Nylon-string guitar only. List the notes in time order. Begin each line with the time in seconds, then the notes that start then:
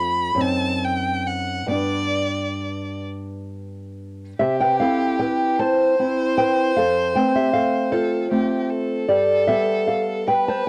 Already playing: F2 A3 F4
0.35 F#2 C4
0.40 D#4
1.67 G2 B3
1.71 D4
4.39 C3 G4 E5
4.60 B4 G5
4.80 C4 E4 A4 F5
5.19 B4 G5
5.59 C5 A5
5.99 C4 E4
6.38 B4 G5
6.76 F2 A4 F5
7.15 A3 C4 B4 G5
7.36 G4 E5
7.53 A4 F5
7.92 F4 C5
8.31 A3 C4
9.08 G2 G4 D5
9.47 G3 B3 G4 E5
9.87 A4 F5
10.28 B4 G5
10.48 C5 A5